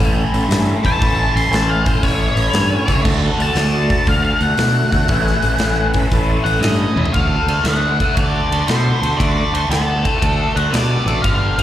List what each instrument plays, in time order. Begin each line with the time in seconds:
Already playing: overdriven electric guitar A2 E3 A3 C#4 E4, tonewheel organ A3 C#4 E4 A4
0.00 fingered electric bass A1, open hi-hat
0.33 fingered electric bass A1, tonewheel organ A3 C#4 E4 A4, open hi-hat
0.48 fingered electric bass G2, tonewheel organ A3 C#4 E4 A4, snare, open hi-hat
0.83 fingered electric bass A1, overdriven electric guitar A2 E3 A3 C#4 E4, tonewheel organ A3 C#4 E4 A4, lead electric guitar A5, kick, open hi-hat
0.98 overdriven electric guitar A2 E3, tonewheel organ A3 C#4 E4 A4
1.02 fingered electric bass A1, overdriven electric guitar A3 C#4 E4, kick, open hi-hat
1.31 fingered electric bass A1, tonewheel organ A3 C#4 E4 A4
1.36 lead electric guitar C6, open hi-hat
1.51 fingered electric bass A1, tonewheel organ A3 C#4 E4 A4, snare, open hi-hat
1.55 lead electric guitar A5
1.69 lead electric guitar F5
1.84 tonewheel organ A3 C#4 E4 A4, lead electric guitar C5, kick, open hi-hat
2.01 fingered electric bass A1, tonewheel organ A3 C#4 E4 A4, lead electric guitar C#5, kick, open hi-hat
2.35 fingered electric bass A1, tonewheel organ A3 C#4 E4 A4, open hi-hat
2.50 fingered electric bass G2, tonewheel organ A3 C#4 E4 A4, open hi-hat
2.55 snare
2.86 fingered electric bass C#2, overdriven electric guitar A2 E3 A3 C#4 E4, tonewheel organ A3 C#4 E4 A4, kick, open hi-hat
3.02 fingered electric bass D2, overdriven electric guitar D3 A3 D4, tonewheel organ A3 D4 F#4 A4, kick, crash
3.06 overdriven electric guitar F#4
3.38 fingered electric bass D2, tonewheel organ A3 D4 F#4 A4, lead electric guitar A5, open hi-hat
3.54 fingered electric bass D2, tonewheel organ A3 D4 F#4 A4, snare, open hi-hat
3.87 tonewheel organ A3 D4 F#4 A4, kick, open hi-hat
4.07 fingered electric bass D2, tonewheel organ A3 D4 F#4 A4, lead electric guitar F5, kick, open hi-hat
4.25 lead electric guitar F5
4.41 fingered electric bass D2, tonewheel organ A3 D4 F#4 A4, lead electric guitar F#5, open hi-hat
4.57 fingered electric bass B2, tonewheel organ A3 D4 F#4 A4, snare, open hi-hat
4.91 fingered electric bass D2, overdriven electric guitar D3 A3 D4 F#4, tonewheel organ A4, kick, open hi-hat
4.95 tonewheel organ A3 D4 F#4
5.07 fingered electric bass A1, overdriven electric guitar A2 E3 A3 C#4 E4, tonewheel organ A3 C#4 E4 A4, kick, open hi-hat
5.27 snare
5.42 fingered electric bass A1, tonewheel organ A3 C#4 E4 A4, open hi-hat
5.58 fingered electric bass A1, tonewheel organ A3 C#4 E4 A4, snare, open hi-hat
5.94 tonewheel organ A3 C#4 E4 A4 B5, kick, open hi-hat
6.11 fingered electric bass A1, tonewheel organ A3 C#4 E4 A4 A5, kick, open hi-hat
6.44 fingered electric bass A1, tonewheel organ A3 C#4 E4 A4 G5, lead electric guitar F#5, open hi-hat
6.60 fingered electric bass G2, tonewheel organ A3 C#4 E4 A4 F#5, lead electric guitar D#5, open hi-hat
6.64 snare
6.95 fingered electric bass E2, overdriven electric guitar A2 E3 A3 C#4 E4, tonewheel organ A3 C#4 E4 A4 E5, high tom
7.05 floor tom
7.13 fingered electric bass D2, overdriven electric guitar D3 A3, tonewheel organ A3 D4 F#4 A4, lead electric guitar F5, kick, ride
7.46 fingered electric bass D2, overdriven electric guitar D3 A3, tonewheel organ A3 D4 F#4 A4, ride
7.64 fingered electric bass D2, overdriven electric guitar D3 B3, tonewheel organ A3 D4 F#4 A4, lead electric guitar F#5, snare, ride
7.98 overdriven electric guitar D3 A3, tonewheel organ A3 D4 F#4 A4, kick, ride
8.15 fingered electric bass D2, overdriven electric guitar D3 A3, tonewheel organ A3 D4 F#4 A4, lead electric guitar D5, kick, ride
8.47 fingered electric bass D2, overdriven electric guitar D3, tonewheel organ A3 D4 F#4 A4
8.52 overdriven electric guitar A3, ride
8.66 fingered electric bass B2, overdriven electric guitar D3 B3, tonewheel organ A3 D4 F#4 A4, lead electric guitar C5, snare, ride
9.01 fingered electric bass D2, overdriven electric guitar D3 A3, tonewheel organ A3 D4 F#4 A4, ride
9.17 fingered electric bass D2, overdriven electric guitar D3 A3, tonewheel organ A3 D4 F#4 A4, lead electric guitar D5, kick, ride
9.50 fingered electric bass D2, overdriven electric guitar D3 A3, tonewheel organ A3 D4 F#4 A4, lead electric guitar C5
9.55 ride
9.69 fingered electric bass D2, overdriven electric guitar D3 B3, tonewheel organ A3 D4 F#4 A4, lead electric guitar A4, snare, ride
10.03 overdriven electric guitar D3 A3, tonewheel organ A3 D4, kick, ride
10.07 tonewheel organ F#4 A4
10.19 fingered electric bass D2, overdriven electric guitar D3 A3, tonewheel organ A3 D4 F#4 A4, kick, ride
10.55 fingered electric bass D2, overdriven electric guitar D3 A3, tonewheel organ A3 D4 F#4 A4, lead electric guitar F#5, ride
10.71 fingered electric bass B2, overdriven electric guitar D3 B3, tonewheel organ A3 D4 F#4 A4, lead electric guitar D5, snare, ride
11.06 fingered electric bass A1, overdriven electric guitar D3 A3, tonewheel organ A3 A4, lead electric guitar D5, ride
11.10 tonewheel organ D4 F#4
11.22 fingered electric bass G1, overdriven electric guitar G2 D3, tonewheel organ B3 D4 G4 B4, lead electric guitar F5, kick, ride
11.56 fingered electric bass G1, overdriven electric guitar G2 D3, tonewheel organ B3 D4 G4 B4, lead electric guitar F5, ride